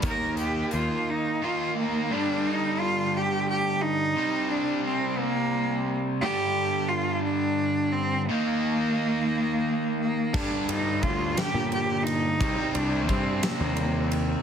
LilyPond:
<<
  \new Staff \with { instrumentName = "Cello" } { \time 6/8 \key g \minor \tempo 4. = 58 bes'8 g'8 f'8 ees'8 f'8 bes8 | d'8 ees'8 f'8 g'8 g'8 ees'8~ | ees'8 d'8 c'8 bes4 r8 | g'4 f'8 d'4 c'8 |
bes2~ bes8 bes8 | d'8 ees'8 f'8 g'8 g'8 ees'8~ | ees'8 d'8 c'8 bes4 r8 | }
  \new Staff \with { instrumentName = "Overdriven electric guitar" } { \clef bass \time 6/8 \key g \minor <ees bes ees'>2 <ees bes ees'>4 | <g, d g>2. | <c g c'>2. | <g, d g>2. |
<ees bes ees'>2. | <g, d g>2. | <c g c'>2. | }
  \new Staff \with { instrumentName = "Picked electric bass" } { \clef bass \time 6/8 \key g \minor ees,4 ees,16 r4. r16 | r2. | r2. | r2. |
r2. | g,16 r16 g,8 d,8 r16 bes,4~ bes,16 | c,16 r16 c,8 g,8 r16 ees,4~ ees,16 | }
  \new DrumStaff \with { instrumentName = "Drums" } \drummode { \time 6/8 <hh bd>8 hh8 hh8 r4. | r4. r4. | r4. r4. | r4. r4. |
r4. r4. | <cymc bd>8 cymr8 <bd cymr>8 <cymr sn>8 cymr8 cymr8 | <bd cymr>8 cymr8 <bd cymr>8 <cymr sn>8 cymr8 cymr8 | }
>>